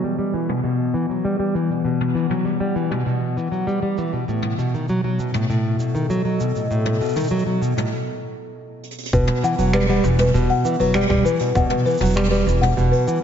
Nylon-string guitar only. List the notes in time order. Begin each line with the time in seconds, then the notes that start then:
0.04 G3
0.19 G3
0.34 E3
0.49 B2
0.64 B2
0.94 E3
1.10 F#3
1.25 G3
1.39 G3
1.55 E3
1.70 B2
1.84 B2
2.15 E3
2.30 F#3
2.45 G3
2.60 G3
2.75 E3
2.91 B2
3.06 B2
3.37 E3
3.52 F#3
3.67 G3
3.82 G3
3.98 E3
4.13 B2
4.28 A2
4.59 B2
4.74 D#3
4.89 F#3
5.04 F#3
5.19 B2
5.35 A2
5.50 A2
5.80 B2
5.95 D#3
6.10 F#3
6.25 F#3
6.40 B2
6.55 A2
6.71 A2
7.01 B2
7.16 D#3
7.31 F#3
7.46 F#3
7.62 B2
7.77 A2
9.13 B2
9.43 E3
9.59 F#3
9.74 G3
9.89 G3
10.04 E3
10.19 B2
10.34 B2
10.65 E3
10.80 F#3
10.95 G3
11.09 G3
11.24 E3
11.40 B2
11.55 B2
11.85 E3
12.01 F#3
12.16 G3
12.31 G3
12.47 E3
12.62 B2
12.77 B2
13.07 E3